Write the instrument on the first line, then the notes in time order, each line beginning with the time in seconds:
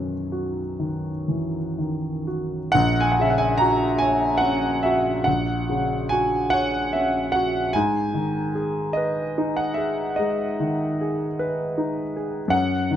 grand piano
Already playing: F#2 D#3 E3 F#4 B4
0.32 F#4
0.80 D#3
1.28 E3
1.78 D#3
2.27 F#4
2.72 A#1 F#5
3.00 G#5
3.12 F#5
3.20 C#3 E5
3.30 F#5
3.38 G#5
3.58 F#4 A#5
3.98 C#5 G#5
4.38 C#4 F#5
4.83 F#4 E5
5.24 A#1 F#5
5.69 C#3
6.09 F#4 G#5
6.50 C#5 F#5
6.93 C#4 E5
7.32 F#4 F#5
7.73 G#2 G#5
8.14 D#3
8.55 G#4
8.93 B4 D#5
9.38 D#4
9.57 F#5
9.74 G#4 E5
10.16 G#3 D#5
10.60 D#3
11.01 G#4
11.39 B4
11.78 D#4
12.16 G#4
12.48 F#2 F#5
12.91 D#3